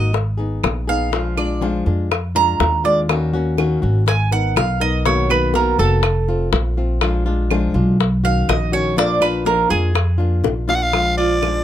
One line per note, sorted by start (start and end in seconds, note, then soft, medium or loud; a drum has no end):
0.00 0.59 G#1 medium
0.00 0.13 A#3 soft
0.00 0.13 D#4 soft
0.00 0.13 F#4 soft
0.00 0.14 D#5 medium
0.13 muted nylon-string guitar stroke medium
0.13 high bongo medium
0.38 0.88 B3 soft
0.38 0.87 D#4 soft
0.38 0.86 G#4 medium
0.64 1.80 A#1 medium
0.64 high bongo medium
0.64 low bongo medium
0.64 claves medium
0.88 1.12 B3 soft
0.88 1.12 D#4 soft
0.88 1.12 G#4 medium
0.88 1.34 F5 loud
1.12 1.36 F3 medium
1.12 1.36 G#3 medium
1.12 1.37 D4 medium
1.12 1.36 F4 medium
1.12 high bongo medium
1.37 1.60 G#3 medium
1.37 1.61 D4 medium
1.37 1.61 F4 medium
1.37 1.61 D5 medium
1.37 high bongo soft
1.37 claves medium
1.61 1.85 F3 medium
1.61 1.85 G#3 medium
1.61 1.86 D4 medium
1.61 1.85 F4 medium
1.61 high bongo medium
1.86 2.56 F2 medium
1.86 2.10 G#3 soft
1.86 2.11 D4 soft
1.86 2.10 F4 medium
1.86 high bongo soft
2.11 muted nylon-string guitar stroke medium
2.11 high bongo medium
2.11 claves medium
2.35 2.85 G#3 soft
2.35 2.84 D4 soft
2.35 2.83 F4 medium
2.35 2.82 A#5 loud
2.35 high bongo soft
2.60 3.76 D#2 medium
2.60 high bongo medium
2.60 low bongo medium
2.84 3.09 G#3 soft
2.84 3.09 D4 soft
2.84 3.08 F4 medium
2.84 3.00 D5 medium
3.09 3.33 D#3 medium
3.09 3.33 A#3 medium
3.09 3.33 C#4 medium
3.09 3.32 F#4 medium
3.09 high bongo medium
3.09 claves medium
3.33 3.57 A#3 medium
3.33 3.58 C#4 medium
3.33 3.57 F#4 medium
3.58 3.82 D#3 medium
3.58 3.82 A#3 medium
3.58 3.82 C#4 medium
3.58 3.81 F#4 medium
3.58 high bongo medium
3.58 claves medium
3.82 4.53 G#1 medium
3.82 4.06 A#3 soft
3.82 4.07 C#4 soft
3.82 4.06 F#4 medium
4.06 4.32 G#5 medium
4.06 muted nylon-string guitar stroke medium
4.06 high bongo medium
4.31 4.81 B3 soft
4.31 4.80 D#4 soft
4.31 4.79 A#4 soft
4.31 4.56 F#5 medium
4.56 5.72 B1 medium
4.56 4.81 F5 medium
4.56 high bongo medium
4.56 low bongo medium
4.56 claves medium
4.80 5.05 B3 soft
4.80 5.05 D#4 medium
4.80 5.04 A#4 medium
4.80 5.05 D#5 loud
5.06 5.29 B2 medium
5.06 5.29 D#3 medium
5.06 5.29 A#3 medium
5.06 5.29 B3 medium
5.06 5.28 F#4 medium
5.06 5.30 C#5 medium
5.06 high bongo medium
5.29 5.54 D#3 medium
5.29 5.54 A#3 medium
5.29 5.54 B3 medium
5.29 5.53 F#4 medium
5.29 5.54 B4 medium
5.29 high bongo soft
5.29 claves medium
5.54 5.78 B2 medium
5.54 5.78 D#3 medium
5.54 5.78 A#3 medium
5.54 5.79 B3 medium
5.54 5.78 F#4 medium
5.54 5.79 A#4 medium
5.54 high bongo medium
5.79 6.48 F1 medium
5.79 6.03 A#3 soft
5.79 6.03 B3 soft
5.79 6.03 F#4 medium
5.79 6.49 A4 medium
5.79 high bongo soft
6.03 muted nylon-string guitar stroke medium
6.03 high bongo medium
6.03 claves medium
6.28 6.77 A3 soft
6.28 6.77 C4 soft
6.28 6.76 F4 medium
6.28 high bongo soft
6.52 7.69 A#1 loud
6.52 high bongo medium
6.52 low bongo medium
6.77 7.02 A3 soft
6.77 7.01 C4 soft
6.77 7.01 F4 medium
7.01 7.25 F3 medium
7.01 7.25 G#3 medium
7.01 7.26 D4 medium
7.01 7.25 F4 medium
7.01 high bongo medium
7.01 claves medium
7.26 7.50 G#3 medium
7.26 7.50 D4 medium
7.26 7.50 F4 medium
7.50 7.74 F3 medium
7.50 7.74 G#3 medium
7.50 7.75 D4 medium
7.50 7.74 F4 medium
7.50 high bongo medium
7.50 claves medium
7.74 8.44 B1 loud
7.74 7.99 G#3 soft
7.74 7.99 D4 soft
7.74 7.99 F4 medium
8.00 muted nylon-string guitar stroke medium
8.00 high bongo medium
8.24 8.73 D#3 soft
8.24 8.72 C#4 soft
8.24 8.71 F#4 medium
8.24 8.48 F5 medium
8.48 9.64 A#1 medium
8.48 8.73 D#5 medium
8.48 high bongo medium
8.48 low bongo medium
8.48 claves medium
8.72 8.96 D#3 soft
8.72 8.97 C#4 soft
8.72 8.96 F#4 medium
8.72 8.97 C#5 loud
8.96 9.20 F3 medium
8.96 9.21 A#3 medium
8.96 9.21 D4 medium
8.96 9.20 F4 medium
8.96 9.22 D5 loud
8.96 high bongo medium
9.21 9.45 A#3 medium
9.21 9.45 D4 medium
9.21 9.45 F4 medium
9.21 9.46 B4 medium
9.21 high bongo soft
9.21 claves medium
9.45 9.69 F3 medium
9.45 9.70 A#3 medium
9.45 9.69 D4 medium
9.45 9.68 F4 medium
9.45 9.70 A#4 medium
9.45 high bongo medium
9.69 10.40 F2 medium
9.69 9.94 A#3 soft
9.69 9.93 D4 soft
9.69 9.94 F4 medium
9.69 10.40 G#4 medium
9.69 high bongo soft
9.94 muted nylon-string guitar stroke medium
9.94 high bongo medium
9.94 claves medium
10.18 10.68 A#3 soft
10.18 10.67 D4 medium
10.18 10.66 F4 medium
10.18 high bongo soft
10.44 11.60 A#1 medium
10.44 high bongo loud
10.68 10.93 A#3 soft
10.68 10.92 D4 medium
10.68 10.92 F4 medium
10.68 10.77 F5 loud
10.68 low bongo medium
10.75 10.84 F#5 medium
10.83 11.17 F5 loud
10.93 11.41 F3 medium
10.93 11.41 G#3 medium
10.93 11.42 D4 medium
10.93 11.42 F4 medium
10.93 high bongo medium
10.93 claves medium
11.17 11.64 F4 medium
11.17 11.64 D5 loud
11.42 11.64 F3 soft
11.42 11.64 G#3 medium
11.42 11.64 D4 soft
11.42 11.64 F4 medium
11.42 high bongo medium
11.42 claves medium